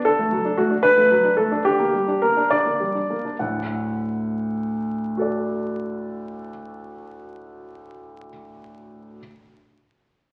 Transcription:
grand piano
0.05 D3 A4
0.19 A3
0.32 F#3
0.45 D4
0.57 A3 F#4
0.70 D4
0.83 D3 B4
0.97 A3
1.11 F#3
1.24 D4
1.37 A3 A4
1.51 D4
1.65 D3 G4
1.79 A#3
1.93 G3
2.08 D4
2.22 A#3 A#4
2.37 D4
2.50 D3 D5
2.65 A#3
2.80 G3
2.94 D4
3.10 A#3
3.25 D4
3.39 D2 A2 F#5
5.17 F#4 A4
5.22 D5

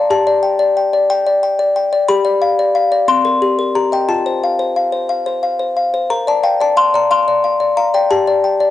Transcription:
music box
Already playing: D5
0.10 G4 A5
0.27 D5
0.43 G5
0.59 D5
0.77 G5
0.93 D5
1.10 G5
1.26 D5
1.43 G5
1.59 D5
1.76 G5
1.93 D5
2.08 G4 B5
2.25 D5
2.42 F5
2.59 D5
2.75 F5
2.92 D5
3.08 C4 C6
3.25 A#4
3.42 G4
3.59 A#4
3.75 G4 A#5
3.92 D#5 G5
4.09 F4 A5
4.26 C5
4.44 F5
4.59 C5
4.76 F5
4.92 C5
5.09 F5
5.26 C5
5.43 F5
5.59 C5
5.77 F5
5.94 C5
6.10 A#4 A#5
6.27 D5 A5
6.43 F5 G5
6.61 D5 A5
6.77 F5 C6
6.94 D5 A#5
7.11 F5 C6
7.28 D5
7.44 F5
7.60 D5
7.77 F5 A#5
7.94 D5 G5
8.11 G4 A5
8.27 D5
8.44 G5
8.60 D5

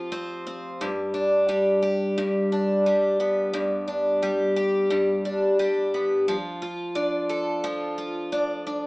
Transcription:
twelve-string acoustic guitar
Already playing: F3 C4 F4 G4
0.12 C4
0.47 C4
0.81 G2
1.14 D4
1.49 G3
1.82 G4
2.18 G2
2.52 D4
2.86 G3
3.20 B3
3.53 G2
3.88 D4
4.22 G3
4.56 G4
4.90 G2
5.25 D4
5.59 G3
5.94 B3
6.28 F3
6.62 F4
6.95 D4
7.29 A4
7.64 F3
7.98 F4
8.32 D4
8.67 D4

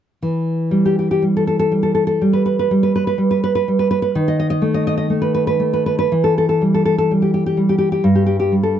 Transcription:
nylon-string guitar
0.23 E3
0.71 G3
0.85 G4
0.99 G4
1.11 G4
1.22 G3
1.37 A4
1.47 A4
1.59 A4
1.72 G3
1.83 A4
1.95 A4
2.07 A4
2.21 G3
2.33 B4
2.46 B4
2.59 B4
2.71 G3
2.83 B4
2.96 B4
3.07 B4
3.18 G3
3.31 B4
3.44 B4
3.55 B4
3.68 G3
3.79 B4
3.91 B4
4.02 B4
4.15 D#3
4.28 D#5
4.39 D#5
4.50 D#5
4.62 A3
4.74 D#5
4.87 D#5
4.97 D#5
5.10 A3
5.22 B4
5.35 B4
5.47 B4
5.60 A3
5.73 B4
5.86 B4
5.99 B4
6.12 E3
6.24 A4
6.38 A4
6.49 A4
6.62 G3
6.74 A4
6.85 A4
6.98 A4
7.11 G3
7.22 G4
7.34 G4
7.46 G4
7.57 G3
7.69 G4
7.78 G4
7.92 G4
8.04 G2
8.15 G4
8.26 G4
8.40 G4
8.52 G3
8.63 A4

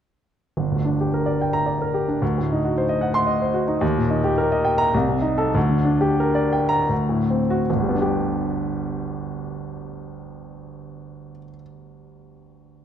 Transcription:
grand piano
0.57 G1
0.71 D2
0.85 D4
1.01 G4
1.14 A#4
1.26 D5
1.41 G5
1.53 A#5
1.66 D5
1.82 A#4
1.94 G4
2.08 D4
2.22 D2
2.38 A2
2.52 D#4
2.65 F#4
2.78 C5
2.89 D#5
3.01 F#5
3.14 C6
3.26 D#5
3.42 C5
3.54 F#4
3.68 D#4
3.81 D#2
3.98 A#2
4.10 D#4
4.24 G4
4.38 A#4
4.52 D#5
4.65 G5
4.78 A#5
4.94 C2
5.09 C3
5.22 D#4
5.38 A4
5.55 D2
5.70 D3
5.85 D4
6.01 G4
6.20 A#4
6.35 D5
6.53 G5
6.69 A#5
6.89 D2
7.09 A2
7.30 C4
7.50 F#4
7.70 G1
7.76 D2
7.82 G3
7.89 B3
7.95 D4
8.02 G4

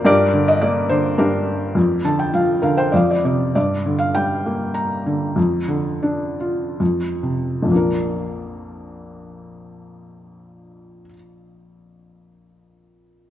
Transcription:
felt piano
0.05 G2 G4 A#4 D5
0.33 D3
0.48 D#5
0.61 A#3 D5
0.89 D3 C5
1.18 G2 D4 G4 A#4
1.75 F2
2.04 D3 A5
2.19 G5
2.34 F3 F5
2.62 D3 A#4 F5
2.77 C5 G5
2.92 F2 D5 F5
3.11 D5
3.24 C3 D5
3.55 G2 D5
3.86 D3
3.99 F5
4.15 G3 G5
4.46 A#3
4.74 A#5
5.06 D3
5.36 F2
5.68 D3
6.03 D4
6.40 F4
6.80 F2
7.23 C3
7.62 A#1 F2
7.68 F3 A#3
7.74 D4 A#4

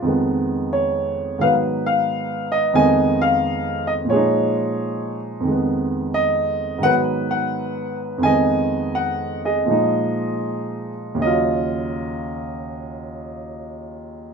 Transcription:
grand piano
Already playing: F4
0.02 F2 D#3 G#3
0.07 B3
0.73 C#5
1.39 G#2 D#3 F#3 B3 B4 F5
1.86 F5
2.52 D#5
2.73 F2 D#3 G#3 B3 G#5
2.78 D#5
3.21 F5
3.87 D#5
4.05 A#2 F3
4.10 G#3 G#4 C#5
4.16 D#4
5.40 F2 D#3
5.47 G#3
5.51 B3
6.14 D#5
6.78 G#2 D#3 F#3
6.83 B3 B4 F#5
7.31 F#5
8.18 F2 D#3
8.23 G#3 D#5 G#5
8.28 B3
8.95 F#5
9.45 G#4 D#5
9.65 A#2 F3 G#3
9.71 D#4
11.15 D#2
11.19 C#3 D#5
11.23 F#3 F4

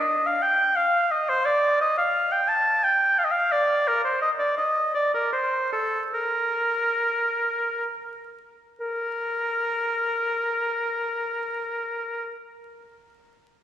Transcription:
oboe
Already playing: D#5
0.26 F5
0.42 G5
0.76 F5
1.11 D#5
1.29 C5
1.45 D5
1.81 D#5
1.97 F5
2.32 G5
2.48 A5
2.84 G5
3.19 F5
3.25 D#5
3.31 F5
3.52 D5
3.88 A#4
4.04 C5
4.22 D#5
4.39 D5
4.57 D#5
4.94 D5
5.14 A#4
5.33 C5
5.73 A4
6.14 A#4
8.80 A#4

